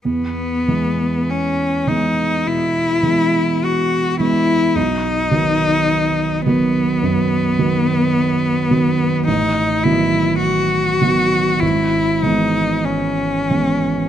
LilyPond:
<<
  \new Staff \with { instrumentName = "Cello" } { \time 4/4 \key e \major \tempo 4 = 52 b4 cis'8 dis'8 e'4 fis'8 e'8 | dis'4. b2~ b8 | dis'8 e'8 fis'4 e'8 dis'8 cis'4 | }
  \new Staff \with { instrumentName = "Grand piano" } { \clef bass \time 4/4 \key e \major e,8 <e gis b>4 <e gis b>8 b,8 <e gis b>4 <e gis b>8 | b,,8 <dis fis b>4 <dis fis b>8 fis,8 <dis fis b>4 <dis fis b>8 | a,,8 <dis fis b>4 <dis fis b>8 gis,,8 <e gis b>4 <e gis b>8 | }
>>